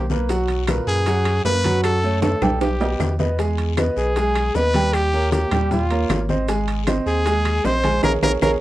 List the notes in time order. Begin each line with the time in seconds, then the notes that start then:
Already playing: B1 G4
0.10 A#3 A#4 B4, high bongo, high conga, short guiro, maracas
0.29 F#3 F#4 F#5, high bongo, high conga, high timbale, long guiro, maracas
0.48 high conga, high timbale, maracas
0.67 A#2 A#4 B4, high bongo, high conga, high timbale, short guiro, claves, maracas
0.87 F#2 G#4, high bongo, high conga, short guiro, maracas
1.06 F#3 F#4 F#5, high bongo, high conga, high timbale, long guiro, maracas
1.25 high bongo, high conga, high timbale, claves, maracas
1.44 F#2 A#3 A#4 B4, high bongo, low bongo, high conga, low timbale, short guiro, maracas
1.64 F#3 F#4 F#5, high bongo, high conga, high timbale, short guiro, maracas
1.84 A4, high bongo, high conga, high timbale, claves, maracas
2.04 A3 A4 C#5, high conga, maracas
2.22 A4, high bongo, high conga, high timbale, short guiro, maracas
2.41 B1 G3 G4 G5, high bongo, low conga, high timbale, short guiro, claves, maracas
2.61 G4, high bongo, high timbale, long guiro, maracas
2.81 B3 B4 D#5, high bongo, high conga, low timbale, maracas
2.99 E2, high bongo, low bongo, high conga, low timbale, short guiro, claves, maracas
3.19 B3 B4 D#5, high bongo, high conga, low timbale, short guiro, maracas
3.39 G#3 G#4 G#5, high bongo, high conga, high timbale, long guiro, maracas
3.58 high conga, high timbale, maracas
3.77 B3 B4 D#5, high bongo, high conga, high timbale, short guiro, claves, maracas
3.96 B1 G#4, high bongo, high conga, short guiro, maracas
4.16 G#3 G#4 G#5, high bongo, high conga, high timbale, long guiro, maracas
4.35 high bongo, high conga, high timbale, claves, maracas
4.55 D#2 B3 B4 D#5, high bongo, low bongo, high conga, short guiro, maracas
4.74 G3 G4 G5, high bongo, high conga, high timbale, short guiro, maracas
4.93 G4, high bongo, high conga, high timbale, long guiro, claves, maracas
5.13 A#3 A#4 C#5, high conga, maracas
5.32 G4, high bongo, high conga, high timbale, short guiro, maracas
5.51 D#2 G3 G4 G5, high bongo, low conga, high timbale, short guiro, claves, maracas
5.71 F4, high bongo, high conga, low conga, long guiro, maracas
5.91 A#3 A#4 C#5, high bongo, high conga, high timbale, maracas
6.09 G#1, high bongo, low bongo, high conga, high timbale, low timbale, short guiro, claves, maracas
6.29 C4 C5 D#5, high bongo, high conga, short guiro, maracas
6.48 G#3 G#4 G#5, high bongo, high conga, high timbale, long guiro, maracas
6.68 high conga, high timbale, maracas
6.87 C4 C5 D#5, high bongo, high conga, high timbale, short guiro, claves, maracas
7.06 D#2 G#4, high bongo, high conga, short guiro, maracas
7.26 G#3 G#4 G#5, high bongo, high conga, high timbale, long guiro, maracas
7.45 high bongo, high conga, high timbale, claves, maracas
7.64 A#1 C4 C5 D#5, high bongo, low bongo, high conga, low timbale, short guiro, maracas
7.84 G#3 G#4 G#5, high bongo, high conga, high timbale, short guiro, maracas
8.03 A#1 G#4 A#4 C#5, high bongo, high conga, high timbale, long guiro, claves, maracas
8.22 A#1 G#4 A#4 C#5, high bongo, high conga, high timbale, long guiro, claves, maracas
8.42 A#1 G#4 A#4 C#5, high bongo, high conga, high timbale, long guiro, claves, maracas